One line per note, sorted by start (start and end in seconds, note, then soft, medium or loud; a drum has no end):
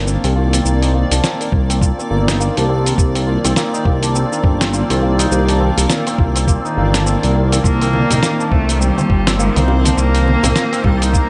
0.00 0.17 G1 medium
0.00 11.29 D#3 medium
0.00 0.65 A#3 medium
0.00 11.29 A#3 medium
0.00 0.88 D4 medium
0.00 0.36 F4 medium
0.00 1.40 A#4 medium
0.00 7.64 D5 medium
0.07 0.24 C4 medium
0.07 cabasa medium
0.24 0.60 C2 loud
0.24 0.53 C4 medium
0.24 open hi-hat soft
0.24 cabasa soft
0.36 1.81 F4 medium
0.53 1.23 C4 medium
0.53 open hi-hat medium
0.53 cabasa medium
0.65 1.04 C2 medium
0.65 0.94 A#3 medium
0.65 cabasa medium
0.82 1.18 D#4 medium
0.82 open hi-hat soft
0.82 cabasa soft
0.95 2.10 A#3 medium
1.11 1.20 C2 loud
1.11 2.34 D4 medium
1.11 open hi-hat medium
1.11 cabasa medium
1.24 1.52 C4 medium
1.24 snare medium
1.24 cabasa medium
1.41 2.86 A#4 medium
1.41 open hi-hat soft
1.41 cabasa soft
1.52 1.92 C2 medium
1.52 1.69 C4 medium
1.52 kick loud
1.70 1.98 C4 medium
1.70 open hi-hat soft
1.70 cabasa medium
1.82 3.27 F4 medium
1.82 kick loud
1.82 cabasa medium
1.99 2.68 C4 medium
1.99 cabasa soft
2.11 2.50 G1 medium
2.11 2.40 A#3 medium
2.28 2.63 D#4 loud
2.28 snare medium
2.28 open hi-hat medium
2.28 cabasa medium
2.40 3.56 A#3 medium
2.40 cabasa medium
2.57 2.93 C2 loud
2.57 3.80 D4 medium
2.57 open hi-hat soft
2.57 cabasa soft
2.69 2.98 C4 medium
2.86 4.31 A#4 medium
2.86 open hi-hat soft
2.86 cabasa medium
2.98 3.38 C2 medium
2.98 3.15 C4 medium
2.98 kick loud
2.98 cabasa medium
3.15 3.44 C4 medium
3.15 open hi-hat soft
3.15 cabasa soft
3.27 4.73 F4 medium
3.44 3.54 C2 medium
3.44 4.14 C4 loud
3.44 open hi-hat soft
3.44 cabasa medium
3.56 3.85 A#3 medium
3.56 snare medium
3.56 cabasa medium
3.74 4.09 D#4 loud
3.74 cabasa soft
3.85 4.25 C2 medium
3.85 5.02 A#3 medium
3.85 kick loud
4.03 5.25 D4 medium
4.03 open hi-hat soft
4.03 cabasa medium
4.15 4.44 C4 medium
4.15 cabasa medium
4.32 5.77 A#4 medium
4.32 cabasa soft
4.44 4.83 G1 medium
4.44 4.61 C4 medium
4.44 kick loud
4.61 4.90 C4 loud
4.61 snare medium
4.61 open hi-hat medium
4.61 cabasa medium
4.73 6.18 F4 medium
4.73 cabasa medium
4.90 5.26 C2 loud
4.90 5.60 C4 medium
4.90 open hi-hat soft
4.90 cabasa soft
5.02 5.31 A#3 medium
5.19 5.55 D#4 loud
5.19 open hi-hat medium
5.19 cabasa medium
5.31 5.71 C2 loud
5.31 6.47 A#3 medium
5.31 cabasa medium
5.48 6.71 D4 medium
5.48 open hi-hat soft
5.48 cabasa soft
5.60 5.89 C4 medium
5.77 5.86 C2 medium
5.77 7.22 A#4 medium
5.77 open hi-hat medium
5.77 cabasa medium
5.90 6.07 C4 medium
5.90 snare medium
5.90 cabasa medium
6.07 6.36 C4 loud
6.07 open hi-hat soft
6.07 cabasa soft
6.18 6.58 C2 medium
6.18 7.64 F4 medium
6.18 kick loud
6.36 7.06 C4 medium
6.36 open hi-hat soft
6.36 cabasa medium
6.48 6.76 A#3 medium
6.48 kick loud
6.48 cabasa medium
6.65 7.00 D#4 loud
6.65 cabasa soft
6.77 7.16 G1 medium
6.77 7.93 A#3 medium
6.94 8.16 D4 medium
6.94 snare medium
6.94 open hi-hat medium
6.94 cabasa medium
7.06 7.35 C4 medium
7.06 cabasa medium
7.23 7.60 C2 loud
7.23 8.68 A#4 medium
7.23 open hi-hat soft
7.23 cabasa soft
7.35 7.52 C4 medium
7.52 7.81 C4 medium
7.52 open hi-hat soft
7.52 cabasa medium
7.64 8.04 C2 medium
7.64 8.48 A#3 loud
7.64 9.09 F4 medium
7.64 11.29 C5 medium
7.64 kick loud
7.64 cabasa medium
7.81 8.51 C4 medium
7.81 open hi-hat soft
7.81 cabasa soft
7.93 8.22 A#3 medium
7.93 high conga medium
8.10 8.20 C2 medium
8.10 8.46 D#4 medium
8.10 open hi-hat soft
8.10 high bongo medium
8.10 low conga medium
8.10 cabasa medium
8.22 9.39 A#3 medium
8.22 snare medium
8.22 cabasa medium
8.40 9.62 D4 medium
8.40 cabasa soft
8.51 8.91 C2 medium
8.51 8.82 A3 medium
8.51 8.81 C4 medium
8.51 kick loud
8.69 10.14 A#4 medium
8.69 open hi-hat medium
8.69 cabasa medium
8.81 9.41 G3 medium
8.81 8.97 C4 medium
8.81 cabasa medium
8.98 9.26 C4 medium
8.98 high conga medium
8.98 cabasa soft
9.10 9.49 G1 medium
9.10 10.55 F4 medium
9.10 kick loud
9.27 9.97 C4 loud
9.27 snare medium
9.27 open hi-hat medium
9.27 cabasa medium
9.39 9.68 A#3 medium
9.39 9.99 C4 medium
9.39 cabasa medium
9.56 9.93 C2 loud
9.56 9.91 D#4 medium
9.56 open hi-hat soft
9.56 high conga medium
9.56 cabasa soft
9.68 10.84 A#3 medium
9.68 high bongo medium
9.85 11.08 D4 medium
9.85 open hi-hat soft
9.85 high conga medium
9.85 cabasa medium
9.97 10.37 C2 medium
9.97 10.86 A#3 loud
9.97 10.26 C4 medium
9.97 cabasa medium
10.14 11.29 A#4 medium
10.14 open hi-hat soft
10.14 cabasa soft
10.26 10.43 C4 medium
10.26 high bongo soft
10.26 high conga medium
10.43 10.53 C2 loud
10.43 10.72 C4 loud
10.43 open hi-hat soft
10.43 high bongo medium
10.43 low conga medium
10.43 cabasa medium
10.55 11.29 F4 medium
10.55 snare medium
10.55 cabasa medium
10.72 11.29 C4 loud
10.72 open hi-hat soft
10.72 cabasa soft
10.84 11.24 C2 medium
10.84 11.15 G3 medium
10.84 11.13 A#3 medium
10.84 kick medium
10.84 low conga medium
11.02 11.29 D#4 loud
11.02 open hi-hat soft
11.02 cabasa medium
11.14 11.29 A#3 medium
11.14 11.29 A#3 loud
11.14 kick medium
11.14 cabasa medium